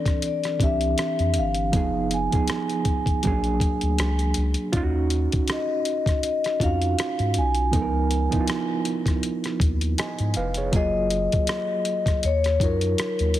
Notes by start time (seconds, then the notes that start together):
Already playing: E3 C4 D4 A4 D5
0.06 kick, cross-stick, closed hi-hat
0.22 D5, closed hi-hat
0.43 cross-stick, closed hi-hat
0.59 C2 E3 C4 D4 E5, kick, closed hi-hat
0.64 G4
0.81 closed hi-hat
0.98 cross-stick, closed hi-hat
1.19 F2, closed hi-hat
1.34 G1, closed hi-hat
1.38 F5
1.54 closed hi-hat
1.72 F1 F3 B3 D#4, kick, closed hi-hat
1.76 G#4
2.11 G#5, closed hi-hat
2.31 A#1 F3 B3 D#4, kick, closed hi-hat
2.35 G#4
2.48 cross-stick, closed hi-hat
2.69 closed hi-hat
2.85 kick, closed hi-hat
3.06 kick, closed hi-hat
3.23 A#1 F#3 A#3 C#4, kick, closed hi-hat
3.27 G#4
3.32 D4
3.44 closed hi-hat
3.60 D2, kick, closed hi-hat
3.81 D2, closed hi-hat
3.98 C#2, cross-stick, closed hi-hat
4.19 closed hi-hat
4.34 C#2, closed hi-hat
4.54 closed hi-hat
4.72 D#2 C#4 D#4 F4, kick, closed hi-hat
4.77 F4
4.83 F#4
5.10 closed hi-hat
5.32 F2, kick, closed hi-hat
5.48 cross-stick, closed hi-hat
5.52 D#5
5.85 closed hi-hat
6.06 kick, cross-stick, closed hi-hat
6.23 D#5, closed hi-hat
6.44 cross-stick, closed hi-hat
6.60 F2 C#4 D#4 F4 F5, kick, closed hi-hat
6.64 F#4
6.82 closed hi-hat
6.99 cross-stick, closed hi-hat
7.19 G#2, closed hi-hat
7.34 B1, closed hi-hat
7.38 G#5
7.55 closed hi-hat
7.71 C#2 F3 B3 D#4, kick, closed hi-hat
7.76 A4
7.82 A#4
8.11 closed hi-hat
8.29 F3 B3 D#4, kick, closed hi-hat
8.34 D#2 E4
8.40 F4
8.48 cross-stick, closed hi-hat
8.85 closed hi-hat
9.06 kick, cross-stick, closed hi-hat
9.23 closed hi-hat
9.44 cross-stick, closed hi-hat
9.60 D#2, kick, closed hi-hat
9.81 closed hi-hat
9.98 D#5 G#5, cross-stick, closed hi-hat
10.19 G#2, closed hi-hat
10.34 F1 B4 F5, closed hi-hat
10.54 G#4 C#5, closed hi-hat
10.72 F#1 F#3 A#3 F4 D#5, kick, closed hi-hat
10.76 G#4
11.10 closed hi-hat
11.32 D#2, kick, closed hi-hat
11.47 cross-stick, closed hi-hat
11.85 closed hi-hat
12.06 kick, cross-stick, closed hi-hat
12.23 D#2 C#5, closed hi-hat
12.44 cross-stick, closed hi-hat
12.60 F#2 F#3 D#4 F4 A#4, kick, closed hi-hat
12.64 C#5
12.81 closed hi-hat
12.98 cross-stick, closed hi-hat
13.19 D#2, closed hi-hat
13.34 closed hi-hat